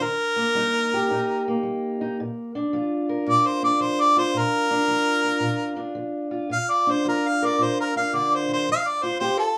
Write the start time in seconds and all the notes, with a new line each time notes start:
Already playing: A#4
0.00 D#3 A#4
0.36 A#3
0.55 G3 D#4
0.94 G4
1.10 A#2 D#4
1.48 A#3
1.63 G3
2.01 D#4
2.20 A#2
2.55 D4
2.73 F3 F4
3.09 A#4
3.27 A#2 F4 D5
3.46 C5
3.63 D4 D5
3.80 F3 C5
4.01 D5
4.17 F4 C5
4.34 A#2 A#4
4.71 D4
4.88 F3 F4
5.24 F4
5.40 A#2 F4
5.76 D4
5.95 F3
6.31 F4
6.50 A#2 F5
6.70 D5
6.87 D4
6.91 C5
7.05 F3 F4 A#4
7.28 F5
7.42 A#4 D5
7.58 A#2 F4
7.63 C5
7.81 A#4
7.96 D4 F5
8.13 D3 D5
8.35 C5
8.49 D#3
8.53 C5
8.69 F3 F5
8.88 D5
9.03 F4 C5
9.20 C4 G4 C5
9.37 A4